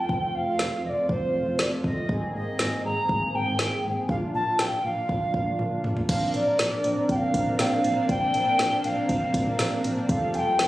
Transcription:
Already playing: A3 C4 F4 G5
0.09 F1, kick
0.34 F1 F5
0.59 F1, snare
0.84 F1 D#5
0.88 D5
1.09 F1 C5, kick
1.34 F1
1.47 F1
1.59 F1 D5, snare
1.84 F1 D#5, kick
2.09 G#1 A#3 C4 G#4, kick
2.34 G#1 D#5
2.59 G#1, snare
2.84 G#1 A#5
3.09 G#1, kick
3.34 G#1 G5
3.47 G#1
3.59 G#1, snare
3.84 G#1
4.09 A#1 A#3 D4 F4 F5, kick
4.34 A#1 A5
4.59 A#1 G5, snare
4.84 A#1 F5
5.09 A#1, kick
5.34 A#1, kick
5.47 A#1
5.59 A#1, high tom
5.84 A#1, mid tom
5.97 floor tom
6.09 A#1 A#3 C4 D4 A#4 F5, kick, closed hi-hat, crash
6.34 A#1 D5, closed hi-hat
6.59 A#1, snare, closed hi-hat
6.84 A#1, closed hi-hat
7.09 A#1 G5, kick, closed hi-hat
7.15 F5
7.34 A#1, kick, closed hi-hat
7.47 A#1
7.59 A#1 G5, snare, closed hi-hat
7.64 F5
7.84 A#1, closed hi-hat
8.09 A#1 G5, kick, closed hi-hat
8.34 A#1, closed hi-hat
8.59 A#1, snare, closed hi-hat
8.84 A#1 F5, closed hi-hat
9.09 A#1, kick, closed hi-hat
9.34 A#1, kick, closed hi-hat
9.47 A#1
9.59 A#1, snare, closed hi-hat
9.84 A#1, closed hi-hat
10.09 F1 G3 A3 F4 G4 A4 F5, kick, closed hi-hat
10.34 F1 G5 G#5, closed hi-hat
10.59 F1, snare, closed hi-hat

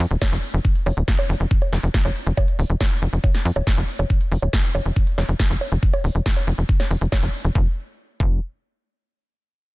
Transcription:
0.11 D#1, closed hi-hat
0.22 kick, snare, closed hi-hat, high bongo
0.32 F1, closed hi-hat
0.43 open hi-hat
0.54 F1, closed hi-hat
0.65 kick, closed hi-hat
0.76 closed hi-hat
0.86 F1, open hi-hat, high bongo
0.97 D#1, closed hi-hat
1.08 kick, snare, closed hi-hat
1.19 closed hi-hat, high bongo
1.29 F1, open hi-hat
1.40 F1, closed hi-hat
1.51 kick, closed hi-hat
1.62 closed hi-hat, high bongo
1.73 F1, snare, open hi-hat
1.83 F1, closed hi-hat
1.94 kick, snare, closed hi-hat
2.05 F1, closed hi-hat, high bongo
2.16 open hi-hat
2.27 F1, closed hi-hat
2.37 kick, closed hi-hat, high bongo
2.48 closed hi-hat
2.59 D#1, open hi-hat
2.70 F1, closed hi-hat
2.81 kick, snare, closed hi-hat, high bongo
2.91 closed hi-hat
3.02 F1, open hi-hat
3.13 F1, closed hi-hat
3.24 kick, closed hi-hat, high bongo
3.35 snare, closed hi-hat
3.45 F2, open hi-hat
3.56 D#1, closed hi-hat, high bongo
3.67 kick, snare, closed hi-hat
3.78 F1, closed hi-hat
3.88 open hi-hat
3.99 F1, closed hi-hat, high bongo
4.10 kick, closed hi-hat
4.21 closed hi-hat
4.32 F1, open hi-hat
4.42 D#1, closed hi-hat, high bongo
4.53 kick, snare, closed hi-hat
4.64 closed hi-hat
4.75 F1, open hi-hat, high bongo
4.86 F1, closed hi-hat
4.96 kick, closed hi-hat
5.07 closed hi-hat
5.18 F1, snare, open hi-hat, high bongo
5.29 F1, closed hi-hat
5.40 kick, snare, closed hi-hat
5.50 F1, closed hi-hat
5.61 open hi-hat, high bongo
5.72 F1, closed hi-hat
5.83 kick, closed hi-hat
5.93 closed hi-hat, high bongo
6.04 D#1, open hi-hat
6.15 F1, closed hi-hat
6.26 kick, snare, closed hi-hat
6.37 closed hi-hat, high bongo
6.47 F1, open hi-hat
6.58 F1, closed hi-hat
6.69 kick, closed hi-hat
6.80 snare, closed hi-hat, high bongo
6.91 F1, open hi-hat
7.01 F1, closed hi-hat
7.12 kick, snare, closed hi-hat, high bongo
7.23 F1, closed hi-hat
7.34 open hi-hat
7.45 F1, closed hi-hat
7.55 F1, kick
8.20 F1, kick

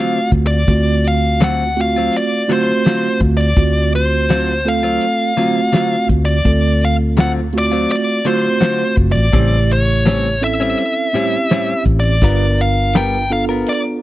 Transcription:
Already playing: D3 F#3 A3 C4 F4 F#4 F5
0.32 D2, kick, closed hi-hat
0.47 D5
0.67 D2 A3 C4 F4 F#4, kick, closed hi-hat
1.04 F5, closed hi-hat
1.40 D3 F#3 C4 F4 F#5, snare, closed hi-hat
1.76 A3 C4 F4 F#4, closed hi-hat
1.81 F5
1.96 F#3 C4 F4
2.13 D5, closed hi-hat
2.48 D3 F#3 A3 C4 F4 F#4, closed hi-hat
2.53 C5
2.85 D3 F#3 C4 F4, snare, closed hi-hat
3.20 D2, kick, closed hi-hat
3.37 D5
3.57 D2 A3 C4 F4 F#4, kick, closed hi-hat
3.93 C5, closed hi-hat
4.29 D3 F#3 C4 F4, snare, closed hi-hat
4.65 A3 C4 F4 A4 F5, closed hi-hat
4.83 F#3 C4 F4
5.01 closed hi-hat
5.37 D3 F#3 A3 C4 F4 F#4, closed hi-hat
5.73 D3 F#3 C4 F4, snare, closed hi-hat
6.09 D2, kick, closed hi-hat
6.25 D5
6.45 D2 A3 C4 F4 A4, kick, closed hi-hat
6.82 F5, closed hi-hat
7.17 D3 F#3 C4 F4 F#5, snare, closed hi-hat
7.53 A3 C4 F4 F#4, closed hi-hat
7.58 D5
7.72 F#3 C4 F4
7.89 D5, closed hi-hat
8.25 D3 F#3 A3 C4 F4 F#4 C5, closed hi-hat
8.60 D3 F#3 C4 F4, snare, closed hi-hat
8.97 F#1, kick, closed hi-hat
9.12 A1 D5
9.33 A1 A2 C#3 G3 A3 C4 C#4 E4 G4, kick, closed hi-hat
9.69 C#5, closed hi-hat
10.05 A2 G3 C4 C#4, snare, closed hi-hat
10.42 C4 C#4 E4 A4 E5, closed hi-hat
10.60 G3 C4 C#4
10.78 closed hi-hat
11.13 A2 G3 C4 C#4 E4 G4, closed hi-hat
11.50 A2 G3 C4 C#4, snare, closed hi-hat
11.85 A1, kick, closed hi-hat
12.00 D5
12.22 G1 G3 B3 D4 F4 A#4, kick, closed hi-hat
12.58 F5, closed hi-hat
12.93 G3 B3 F4 A#4 G5, snare, closed hi-hat
13.30 B3 D4 F4 A4 F5, closed hi-hat
13.49 B3 F4 A#4
13.67 D5, closed hi-hat

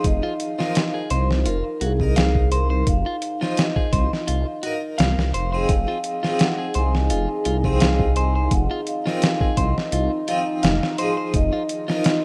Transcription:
Already playing: F3 D#4 G#4 F5
0.04 F1 D#5, kick, closed hi-hat
0.23 F4
0.40 closed hi-hat
0.59 F3 D#4 F4 A#4, snare
0.75 snare, closed hi-hat
0.94 G#4
1.10 C2 C5, closed hi-hat
1.31 snare
1.46 F1 F4 A#4, closed hi-hat
1.81 C2 F#4 G#4, closed hi-hat
2.00 D#4 A#4, kick
2.16 F5, snare, closed hi-hat
2.35 kick
2.52 A#4 C5, closed hi-hat
2.70 C5
2.87 F1 F5, kick, closed hi-hat
3.06 F4
3.22 closed hi-hat
3.41 F3 D#4 F4 C5, snare
3.57 D#5, snare, closed hi-hat
3.76 G#4, kick
3.93 C2 C5, kick, closed hi-hat
4.13 snare
4.27 C2 F4, closed hi-hat
4.63 D#4 F#4 A#4, closed hi-hat
4.98 C2 F5, snare, closed hi-hat
5.18 C2, snare
5.34 F1 C5, closed hi-hat
5.53 F3 C4 D#4 G#4 C5
5.69 F1 D#4 G#4 D#5 F5, kick, closed hi-hat
5.88 F4
6.04 closed hi-hat
6.23 F3 C4 D#4 F4 G#4, snare
6.39 F#5, snare, closed hi-hat
6.58 G#4
6.74 C2 C5 G#5, closed hi-hat
6.95 snare
7.10 F1 F4, closed hi-hat
7.45 C2 F4, closed hi-hat
7.64 F3 C4 D#4 G#4, kick
7.80 F5, snare, closed hi-hat
7.99 kick
8.16 C5 G#5, closed hi-hat
8.35 C5
8.51 F1 F#5, kick, closed hi-hat
8.71 F4
8.87 F5, closed hi-hat
9.06 F3 C4 D#4 F4 A#4, snare
9.22 snare, closed hi-hat
9.41 G#4, kick
9.57 C2 C5 D#5, kick, closed hi-hat
9.78 snare
9.92 C2 F4, closed hi-hat
10.28 F3 C4 D#4 F4, closed hi-hat
10.63 F1 F5, snare, closed hi-hat
10.83 snare
10.98 F3 D#4 G#4 C5, closed hi-hat
11.17 C5
11.34 F1 D#5, kick, closed hi-hat
11.53 F4
11.69 closed hi-hat
11.88 F3 D#4 F4 A#4, snare
12.04 snare, closed hi-hat

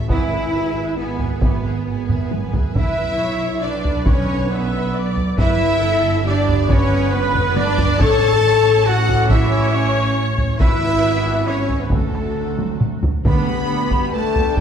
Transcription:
Already playing: E5
0.07 G#1 E3 B3 E4 G#4 B4, taiko
0.12 G#5
0.30 G#4 B4 E5
0.53 G#1 G#4 B4 G#5
0.74 G#4 B4 E5
0.96 G#1 B3 G#4 B4 G#5
1.20 G#4 B4 E5, taiko low
1.41 G#1 E3 B3 G#4 B4 G#5, taiko
1.65 G#4 B4 E5
1.85 G#1 G#4 B4 G#5
2.07 G#4 B4, taiko low-mid
2.11 E5
2.29 G#1 G#4 B4, taiko high
2.33 G#5
2.52 G#4 B4 E5, taiko low
2.73 B1 D3 B3 E4 B4 E5, taiko
3.19 C#5
3.61 D4 B4 D5
3.85 taiko low
4.05 C#4 C#5, taiko
4.49 B3 B4 E5
4.96 D5
5.16 taiko low
5.38 G1 D3 B3 E4 B4 E5, taiko
5.82 A4
6.25 D4 G4 D5
6.47 taiko low
6.69 C#4 B4 C#5, taiko
7.12 B3 B4
7.35 taiko low-mid
7.56 D4 D5, taiko high
7.60 D4
7.79 taiko low
7.99 A1 E3 C#4 A4 C#5 A5, taiko
8.44 C#5
8.86 F#4 A4 F#5
9.09 taiko low
9.29 E4 C#5 E5, taiko
9.72 C#4 C#5
10.38 taiko low
10.58 G#1 E3 B3 E4 B4 E5, taiko
11.46 C#4 E4 C#5
11.69 taiko low
11.80 B3 B4
11.90 D2 F#3 A3 C4 F#4 A4, taiko
11.95 A4
12.14 taiko rim
12.59 taiko high
12.81 taiko mid
13.03 taiko low
13.25 D2 D3 B3 D4 B4 G5 B5, taiko
13.48 G3 B3
13.70 B3 D4
13.91 G3 B3, taiko
14.13 A3 B3 D4 A4 A5
14.36 G3 B3, taiko low
14.56 G3 G4 G5, taiko

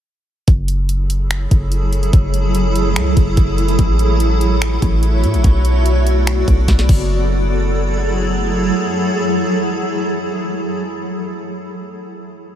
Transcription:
0.48 F#1 F#3 E4 G#4 A4, kick, closed hi-hat
0.68 closed hi-hat
0.89 closed hi-hat
1.10 closed hi-hat
1.31 finger snap, closed hi-hat
1.51 F#1, kick, closed hi-hat
1.72 closed hi-hat
1.93 closed hi-hat
2.03 closed hi-hat
2.13 F#1, kick, closed hi-hat
2.34 closed hi-hat
2.55 closed hi-hat
2.76 closed hi-hat
2.96 C#2, finger snap, closed hi-hat
3.17 F#1, kick, closed hi-hat
3.37 F#1, kick, closed hi-hat
3.58 closed hi-hat
3.68 closed hi-hat
3.79 A1 A3 F#4 C#5, kick, closed hi-hat
3.99 closed hi-hat
4.20 closed hi-hat
4.41 closed hi-hat
4.62 finger snap, closed hi-hat
4.82 A1, kick, closed hi-hat
5.03 closed hi-hat
5.24 A2, closed hi-hat
5.34 A1, closed hi-hat
5.44 B1 B3 A4 D5, kick, closed hi-hat
5.65 closed hi-hat
5.86 closed hi-hat
6.07 closed hi-hat
6.27 finger snap, closed hi-hat
6.48 B1, kick, closed hi-hat
6.68 B1, kick, snare, closed hi-hat
6.79 snare
6.89 F#1 F#3 E4 G#4 A4, kick, crash

